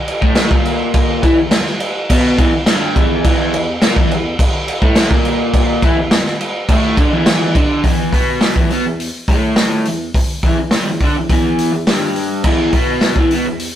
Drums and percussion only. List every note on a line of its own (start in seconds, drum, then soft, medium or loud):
0.08 crash medium
0.22 kick loud
0.35 snare loud
0.35 crash medium
0.51 kick loud
0.65 crash medium
0.94 kick loud
0.94 crash medium
1.23 kick loud
1.23 crash medium
1.51 snare loud
1.51 crash medium
1.66 snare soft
1.80 crash medium
2.10 kick loud
2.10 crash loud
2.38 kick loud
2.38 crash medium
2.66 snare loud
2.66 crash medium
2.96 kick loud
2.96 crash medium
3.24 kick loud
3.24 crash medium
3.54 crash medium
3.82 snare loud
3.82 crash medium
3.96 kick loud
4.11 crash medium
4.39 kick loud
4.39 crash medium
4.68 crash medium
4.82 kick loud
4.95 snare loud
4.95 crash medium
5.11 kick loud
5.25 crash medium
5.54 kick loud
5.54 crash medium
5.82 kick loud
5.82 crash medium
6.11 snare loud
6.11 crash medium
6.26 snare soft
6.41 crash medium
6.69 kick loud
6.69 crash medium
6.97 kick loud
6.97 crash medium
7.26 snare loud
7.26 crash loud
7.55 kick loud
7.55 crash medium
7.84 kick loud
7.84 open hi-hat medium
8.13 kick loud
8.13 open hi-hat medium
8.41 snare loud
8.41 open hi-hat medium
8.56 kick loud
8.70 open hi-hat medium
9.00 open hi-hat medium
9.28 kick loud
9.28 open hi-hat medium
9.56 snare loud
9.56 open hi-hat medium
9.85 open hi-hat medium
10.14 kick loud
10.14 open hi-hat medium
10.43 kick loud
10.43 open hi-hat medium
10.71 snare loud
10.71 open hi-hat medium
11.00 kick loud
11.00 open hi-hat medium
11.29 kick loud
11.29 open hi-hat medium
11.58 open hi-hat medium
11.87 snare loud
11.87 open hi-hat medium
12.16 open hi-hat medium
12.44 kick loud
12.44 crash loud
12.72 kick loud
12.72 open hi-hat medium
13.01 snare loud
13.01 open hi-hat medium
13.16 kick loud
13.31 open hi-hat medium
13.59 open hi-hat medium